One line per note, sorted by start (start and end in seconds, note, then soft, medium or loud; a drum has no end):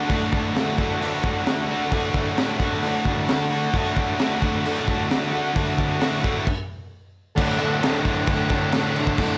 0.00 0.11 A3 medium
0.00 0.12 F#4 medium
0.07 0.99 D2 medium
0.07 0.54 A2 medium
0.07 0.56 D3 loud
0.07 0.27 A4 loud
0.07 0.27 D5 medium
0.07 0.27 F#5 loud
0.07 kick loud
0.07 open hi-hat medium
0.12 0.57 A3 loud
0.12 0.58 F#4 medium
0.31 0.50 A4 medium
0.31 0.50 D5 medium
0.31 0.50 A5 medium
0.31 kick medium
0.54 1.01 A2 medium
0.54 0.81 D3 medium
0.54 0.80 A3 medium
0.54 0.73 A4 medium
0.54 0.73 D5 medium
0.54 0.73 E5 medium
0.54 snare loud
0.54 open hi-hat soft
0.59 0.78 F#4 medium
0.78 1.03 A3 medium
0.78 1.03 F#4 medium
0.78 0.96 A4 medium
0.78 0.96 D5 medium
0.78 0.96 F#5 medium
0.78 kick medium
0.82 1.02 D3 medium
1.00 1.90 D2 medium
1.00 1.47 A2 medium
1.00 1.26 D3 medium
1.00 1.25 A3 medium
1.00 1.19 A4 loud
1.00 1.19 D5 medium
1.00 1.19 E5 loud
1.00 open hi-hat medium
1.04 1.22 F#4 medium
1.23 1.72 D3 medium
1.23 1.70 A3 medium
1.23 1.68 F#4 medium
1.23 1.42 A4 medium
1.23 1.42 D5 medium
1.23 1.42 F#5 medium
1.23 kick medium
1.46 1.65 A4 medium
1.46 1.65 D5 medium
1.46 1.65 F#5 medium
1.46 snare loud
1.46 open hi-hat medium
1.68 1.92 D3 medium
1.68 1.93 A3 medium
1.68 1.93 F#4 medium
1.68 1.87 A4 medium
1.68 1.87 D5 medium
1.68 1.87 F#5 medium
1.90 2.83 D2 medium
1.90 2.34 A2 medium
1.90 2.36 D3 medium
1.90 2.38 A3 medium
1.90 2.09 A4 loud
1.90 2.10 D5 medium
1.90 2.09 F#5 loud
1.90 kick loud
1.90 open hi-hat medium
1.94 2.39 F#4 loud
2.14 2.33 A4 medium
2.14 2.33 D5 medium
2.14 2.34 F#5 medium
2.14 kick medium
2.36 2.82 A2 medium
2.36 2.63 D3 medium
2.36 2.61 A3 medium
2.36 2.59 F#4 medium
2.36 2.56 A4 medium
2.36 2.56 D5 medium
2.36 2.56 F#5 medium
2.36 snare loud
2.36 open hi-hat medium
2.59 2.86 A3 medium
2.59 2.87 F#4 medium
2.59 2.78 A4 medium
2.59 2.78 D5 medium
2.59 2.78 F#5 medium
2.59 kick medium
2.63 2.84 D3 medium
2.82 3.73 D2 medium
2.82 3.30 A2 medium
2.82 3.09 D3 medium
2.82 3.07 A3 medium
2.82 3.01 A4 loud
2.82 3.01 D5 medium
2.82 3.01 F#5 loud
2.82 open hi-hat medium
2.87 3.06 F#4 loud
3.05 3.54 D3 medium
3.05 3.52 A3 medium
3.05 3.50 F#4 medium
3.05 3.25 A4 medium
3.05 3.25 D5 medium
3.05 3.25 A5 medium
3.05 kick medium
3.28 3.47 A4 medium
3.28 3.47 D5 medium
3.28 3.47 F#5 medium
3.28 snare loud
3.28 open hi-hat medium
3.51 3.75 D3 medium
3.51 3.76 A3 medium
3.51 3.77 F#4 medium
3.51 3.70 A4 medium
3.51 3.70 D5 medium
3.51 3.70 A5 medium
3.74 4.64 D2 medium
3.74 4.17 A2 loud
3.74 4.19 D3 medium
3.74 4.20 A3 loud
3.74 4.21 F#4 medium
3.74 3.92 A4 loud
3.74 3.93 D5 medium
3.74 3.93 A5 loud
3.74 kick loud
3.74 open hi-hat medium
3.96 4.15 A4 medium
3.96 4.15 D5 medium
3.96 4.15 F#5 medium
3.96 kick medium
4.18 4.64 A2 medium
4.18 4.44 D3 medium
4.18 4.42 A3 medium
4.18 4.40 F#4 medium
4.18 4.38 A4 medium
4.18 4.38 D5 medium
4.18 4.38 E5 medium
4.18 snare loud
4.18 open hi-hat medium
4.41 4.65 D3 medium
4.41 4.65 A3 medium
4.41 4.67 F#4 medium
4.41 4.60 A4 medium
4.41 4.60 D5 medium
4.41 4.60 F#5 medium
4.41 kick medium
4.64 5.10 D2 medium
4.64 5.11 A2 medium
4.64 4.87 D3 medium
4.64 4.86 A3 loud
4.64 4.84 F#4 medium
4.64 4.83 A4 loud
4.64 4.83 D5 loud
4.64 4.83 F#5 loud
4.64 open hi-hat medium
4.85 5.34 D3 medium
4.85 5.33 A3 medium
4.85 5.30 F#4 medium
4.85 5.06 D5 medium
4.85 kick medium
4.89 5.06 A4 medium
4.89 5.07 A5 medium
5.11 5.29 A4 medium
5.11 5.29 D5 medium
5.11 5.29 F#5 medium
5.11 snare loud
5.11 open hi-hat medium
5.32 5.54 D3 medium
5.32 5.55 A3 medium
5.32 5.55 F#4 medium
5.32 5.51 A4 medium
5.32 5.51 D5 medium
5.32 5.52 F#5 medium
5.53 6.23 D2 medium
5.53 5.98 A2 medium
5.53 5.99 D3 loud
5.53 6.01 A3 loud
5.53 6.02 F#4 loud
5.53 5.74 A4 loud
5.53 5.74 D5 medium
5.53 5.74 F#5 loud
5.53 kick loud
5.53 open hi-hat medium
5.78 5.97 A4 medium
5.78 5.97 D5 medium
5.78 5.97 A5 medium
5.78 kick medium
5.99 6.44 A2 medium
5.99 6.24 D3 medium
5.99 6.22 A3 medium
5.99 6.19 A4 medium
5.99 6.19 D5 medium
5.99 6.18 E5 medium
5.99 snare loud
5.99 open hi-hat medium
6.03 6.20 F#4 medium
6.21 6.45 A3 medium
6.21 6.44 F#4 medium
6.21 6.42 A4 medium
6.21 6.42 D5 medium
6.21 6.42 F#5 medium
6.21 kick medium
6.26 6.46 D3 medium
6.47 kick loud
6.47 crash medium
7.35 7.58 D2 medium
7.35 7.57 A2 loud
7.35 7.59 D3 loud
7.35 7.54 A4 loud
7.35 7.54 D5 loud
7.35 7.54 F#5 loud
7.35 kick loud
7.35 crash loud
7.35 crash medium
7.58 7.82 D2 medium
7.58 7.82 A2 medium
7.58 7.83 D3 loud
7.58 7.77 A4 loud
7.58 7.77 D5 loud
7.58 7.77 F#5 loud
7.58 crash medium
7.82 8.04 D2 medium
7.82 8.04 A2 medium
7.82 8.06 D3 medium
7.82 8.00 A4 medium
7.82 8.00 D5 medium
7.82 8.00 A5 medium
7.82 snare loud
7.82 crash medium
7.96 snare soft
8.04 8.26 D2 medium
8.04 8.27 A2 loud
8.04 8.28 D3 loud
8.04 8.22 A4 medium
8.04 8.22 D5 medium
8.04 8.22 A5 loud
8.04 kick medium
8.04 crash medium
8.27 8.50 D2 medium
8.27 8.50 A2 medium
8.27 8.51 D3 medium
8.27 8.45 A4 medium
8.27 8.45 D5 medium
8.27 8.45 F#5 medium
8.27 kick loud
8.27 crash medium
8.49 8.73 D2 medium
8.49 8.73 A2 loud
8.49 8.74 D3 medium
8.49 8.68 A4 medium
8.49 8.67 D5 medium
8.49 8.68 A5 medium
8.49 kick medium
8.49 crash medium
8.72 8.96 D2 loud
8.72 8.97 A2 loud
8.72 8.97 D3 loud
8.72 8.91 A4 loud
8.72 8.91 D5 loud
8.72 8.91 F#5 loud
8.72 snare loud
8.72 crash medium
8.95 9.17 D2 medium
8.95 9.18 A2 loud
8.95 9.19 D3 medium
8.95 9.14 A4 medium
8.95 9.13 D5 medium
8.95 9.14 F#5 medium
8.95 crash medium
9.07 kick medium
9.18 9.38 D2 loud
9.18 9.38 A2 loud
9.18 9.38 D3 loud
9.18 9.36 A4 loud
9.18 9.36 D5 loud
9.18 9.36 F#5 loud
9.18 kick loud
9.18 crash medium